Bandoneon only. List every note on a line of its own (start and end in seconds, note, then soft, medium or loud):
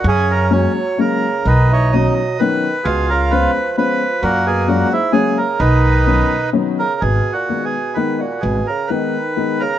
0.07 0.73 C#4 medium
0.07 0.32 G#4 loud
0.31 0.53 A#4 medium
0.52 1.00 C#5 medium
1.00 1.48 A#4 medium
1.47 2.14 D#4 medium
1.47 1.72 B4 medium
1.73 1.95 C#5 medium
1.92 2.40 D#5 medium
2.39 2.87 B4 medium
2.84 3.51 F4 medium
2.84 3.10 G#4 medium
3.10 3.32 A#4 medium
3.31 3.76 B4 medium
3.78 4.24 B4 medium
4.22 4.88 A#3 medium
4.22 4.47 F#4 loud
4.46 4.69 G#4 medium
4.68 4.93 F#4 medium
4.93 5.12 E4 medium
5.12 5.38 G#4 medium
5.37 5.60 A#4 medium
5.59 6.50 D#4 medium
5.59 6.50 B4 medium
6.79 7.02 A#4 medium
7.01 7.33 G#4 medium
7.33 7.65 F#4 medium
7.65 7.97 G#4 medium
7.94 8.20 B4 medium
8.19 8.43 F#4 medium
8.40 8.67 G#4 medium
8.67 8.90 A#4 medium
8.87 9.62 B4 medium
9.60 9.79 A#4 medium